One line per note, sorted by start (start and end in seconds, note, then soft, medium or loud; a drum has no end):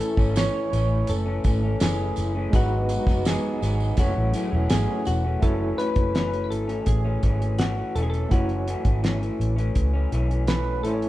0.00 0.18 A2 medium
0.00 0.18 E3 medium
0.00 0.18 A3 medium
0.00 2.12 A3 medium
0.00 2.49 A3 medium
0.00 0.17 C#4 medium
0.00 2.12 C#4 medium
0.00 2.50 C#4 medium
0.00 2.13 E4 medium
0.00 2.50 E4 medium
0.00 0.38 A4 medium
0.00 2.14 C#5 medium
0.00 closed hi-hat medium
0.17 0.47 G#1 medium
0.17 0.35 E3 soft
0.17 0.35 A3 medium
0.17 0.36 C#4 medium
0.17 kick medium
0.17 tambourine soft
0.35 0.71 A2 medium
0.35 0.72 E3 medium
0.35 0.73 A3 medium
0.35 0.73 C#4 medium
0.35 1.11 C#5 loud
0.35 snare loud
0.35 closed hi-hat medium
0.35 tambourine medium
0.72 1.02 A1 loud
0.72 1.26 A2 medium
0.72 1.27 E3 medium
0.72 1.26 A3 medium
0.72 1.25 C#4 medium
0.72 closed hi-hat medium
0.72 tambourine soft
1.07 1.38 F#1 medium
1.07 1.84 A4 medium
1.07 closed hi-hat medium
1.07 tambourine soft
1.26 1.44 E3 soft
1.26 1.45 A3 medium
1.26 1.44 C#4 medium
1.44 1.74 G#1 loud
1.44 1.63 A2 medium
1.44 1.63 E3 medium
1.44 1.63 A3 medium
1.44 1.62 C#4 medium
1.44 kick medium
1.44 closed hi-hat medium
1.44 tambourine soft
1.63 1.80 E3 soft
1.63 1.81 A3 soft
1.63 1.81 C#4 medium
1.80 2.10 F#1 medium
1.80 2.35 A2 medium
1.80 2.35 E3 medium
1.80 2.35 A3 medium
1.80 2.33 C#4 medium
1.80 2.56 G#4 medium
1.80 snare loud
1.80 closed hi-hat medium
1.80 tambourine medium
2.16 2.46 F#1 medium
2.16 closed hi-hat medium
2.16 tambourine soft
2.35 2.53 E3 soft
2.35 2.54 A3 medium
2.35 2.53 C#4 medium
2.50 2.97 G#1 loud
2.50 3.07 G#2 medium
2.50 3.08 F#3 medium
2.50 3.93 G#3 medium
2.50 3.96 G#3 medium
2.50 3.96 B3 medium
2.50 3.07 B3 medium
2.50 3.94 D#4 medium
2.50 3.96 F#4 medium
2.50 3.95 F#4 medium
2.50 kick loud
2.50 closed hi-hat medium
2.50 tambourine soft
2.55 3.06 D#4 medium
2.55 3.29 F#4 medium
2.55 3.96 B4 medium
2.89 closed hi-hat medium
2.89 tambourine soft
3.07 3.36 F#1 medium
3.07 3.24 F#3 soft
3.07 3.26 B3 soft
3.07 3.25 D#4 medium
3.07 kick medium
3.07 snare soft
3.07 tambourine soft
3.25 3.60 G#2 medium
3.25 3.61 F#3 medium
3.25 3.62 B3 medium
3.25 3.62 D#4 medium
3.25 4.01 G#4 medium
3.25 snare loud
3.25 closed hi-hat medium
3.25 tambourine medium
3.61 3.91 G#1 loud
3.61 3.97 G#2 medium
3.61 3.98 F#3 medium
3.61 3.99 B3 medium
3.61 3.99 D#4 medium
3.61 closed hi-hat medium
3.61 tambourine soft
3.80 tambourine soft
3.96 4.12 F#1 loud
3.96 4.16 F#2 medium
3.96 4.16 E3 medium
3.96 5.41 F#3 medium
3.96 5.38 A3 medium
3.96 5.41 A3 medium
3.96 4.16 A3 medium
3.96 5.41 C#4 medium
3.96 5.39 E4 medium
3.96 5.41 E4 medium
3.96 5.40 F#4 medium
3.96 5.03 F#4 medium
3.96 5.41 G#4 medium
3.96 kick medium
3.96 closed hi-hat medium
3.96 tambourine soft
4.00 4.15 C#4 medium
4.00 5.41 C#5 medium
4.16 4.31 A1 medium
4.16 4.34 E3 soft
4.16 4.35 A3 soft
4.16 4.34 C#4 medium
4.34 4.52 F#2 medium
4.34 4.52 E3 medium
4.34 4.53 A3 medium
4.34 4.51 C#4 medium
4.34 closed hi-hat medium
4.34 tambourine soft
4.52 4.67 E1 medium
4.52 4.70 E3 soft
4.52 4.71 A3 soft
4.52 4.70 C#4 medium
4.70 4.85 G#1 medium
4.70 5.24 F#2 medium
4.70 5.25 E3 medium
4.70 5.25 A3 medium
4.70 5.23 C#4 medium
4.70 5.08 G#4 loud
4.70 snare loud
4.70 closed hi-hat loud
4.70 tambourine medium
5.05 5.35 E1 medium
5.05 5.44 F#4 medium
5.05 closed hi-hat medium
5.05 tambourine soft
5.24 5.42 E3 soft
5.24 5.43 A3 medium
5.24 5.42 C#4 medium
5.40 5.71 F#1 loud
5.40 5.76 F#2 medium
5.40 5.77 E3 medium
5.40 8.26 A3 medium
5.40 8.27 E4 medium
5.40 8.28 F#4 medium
5.40 5.80 A4 medium
5.40 kick medium
5.40 closed hi-hat medium
5.44 5.78 A3 medium
5.44 5.79 C#4 medium
5.44 8.28 C#5 medium
5.78 5.96 F#2 medium
5.78 5.96 E3 medium
5.78 5.97 A3 medium
5.78 5.95 C#4 medium
5.78 6.43 B4 loud
5.78 closed hi-hat medium
5.96 6.51 F#1 medium
5.96 6.14 E3 soft
5.96 6.14 A3 soft
5.96 6.14 C#4 medium
5.96 kick medium
5.96 closed hi-hat soft
6.14 6.32 F#2 medium
6.14 6.33 E3 medium
6.14 6.33 A3 medium
6.14 6.31 C#4 medium
6.14 snare loud
6.14 closed hi-hat medium
6.32 6.70 E3 soft
6.32 6.68 A3 soft
6.32 6.67 C#4 soft
6.32 closed hi-hat soft
6.44 6.51 B4 medium
6.50 6.80 G#1 medium
6.50 6.88 A4 medium
6.50 closed hi-hat medium
6.68 7.06 E3 soft
6.68 7.04 A3 soft
6.68 7.03 C#4 medium
6.68 closed hi-hat soft
6.86 7.16 A1 medium
6.86 7.55 G#4 medium
6.86 kick medium
6.86 closed hi-hat medium
7.04 7.22 E3 soft
7.04 7.23 A3 soft
7.04 7.23 C#4 medium
7.22 7.81 G#1 medium
7.22 7.41 F#2 medium
7.22 7.41 E3 medium
7.22 7.40 A3 medium
7.22 7.39 C#4 medium
7.22 kick medium
7.22 closed hi-hat medium
7.40 7.58 E3 soft
7.40 7.59 A3 soft
7.40 7.59 C#4 medium
7.40 closed hi-hat soft
7.59 7.77 F#2 medium
7.59 7.77 E3 medium
7.59 7.77 A3 medium
7.59 7.76 C#4 medium
7.59 7.96 F#4 medium
7.59 snare loud
7.59 closed hi-hat medium
7.77 7.95 E3 soft
7.77 7.96 A3 soft
7.77 7.95 C#4 soft
7.95 8.24 E1 medium
7.95 8.30 F#2 medium
7.95 8.30 E3 medium
7.95 8.31 A3 medium
7.95 8.31 C#4 medium
7.95 8.03 A4 medium
7.95 closed hi-hat medium
8.03 8.09 G#4 medium
8.10 8.32 A4 medium
8.10 closed hi-hat soft
8.29 8.75 F#1 loud
8.29 8.66 F#2 medium
8.29 8.66 E3 medium
8.29 10.79 A3 medium
8.29 8.67 A3 medium
8.29 8.68 C#4 medium
8.29 10.80 E4 medium
8.29 9.00 F#4 medium
8.29 10.81 F#4 medium
8.29 kick loud
8.29 closed hi-hat medium
8.34 10.81 C#5 medium
8.49 closed hi-hat soft
8.67 8.85 F#2 medium
8.67 8.86 E3 medium
8.67 8.85 A3 medium
8.67 8.83 C#4 medium
8.67 closed hi-hat medium
8.85 9.29 G#1 medium
8.85 9.02 E3 soft
8.85 9.03 A3 soft
8.85 9.03 C#4 soft
8.85 kick medium
8.85 closed hi-hat soft
9.03 9.21 F#2 medium
9.03 9.22 E3 medium
9.03 9.20 A3 medium
9.03 9.19 C#4 medium
9.03 snare loud
9.03 closed hi-hat medium
9.20 9.58 E3 soft
9.20 9.57 A3 medium
9.20 9.55 C#4 medium
9.20 closed hi-hat soft
9.40 9.69 A1 medium
9.40 closed hi-hat medium
9.56 9.95 E3 soft
9.56 9.94 A3 medium
9.56 9.92 C#4 medium
9.56 closed hi-hat soft
9.75 10.05 C#2 medium
9.75 kick medium
9.75 closed hi-hat medium
9.94 10.11 E3 soft
9.94 10.12 A3 medium
9.94 10.12 C#4 medium
10.11 10.84 B1 medium
10.11 10.30 F#2 medium
10.11 10.30 E3 medium
10.11 10.30 A3 medium
10.11 10.28 C#4 medium
10.11 closed hi-hat medium
10.30 10.47 E3 soft
10.30 10.48 A3 soft
10.30 10.48 C#4 medium
10.30 closed hi-hat soft
10.47 10.83 F#2 medium
10.47 10.84 E3 medium
10.47 10.85 A3 medium
10.47 10.85 C#4 medium
10.47 10.85 B4 loud
10.47 snare loud
10.47 closed hi-hat medium
10.82 11.09 A1 medium
10.82 11.09 A2 medium
10.82 11.09 E3 medium
10.82 11.09 A3 medium
10.82 11.09 C#4 medium
10.82 11.09 E4 medium
10.82 11.09 A4 medium
10.82 closed hi-hat medium
10.87 11.09 C#4 medium
10.87 10.92 C5 medium
10.93 11.09 C#5 medium
11.02 closed hi-hat soft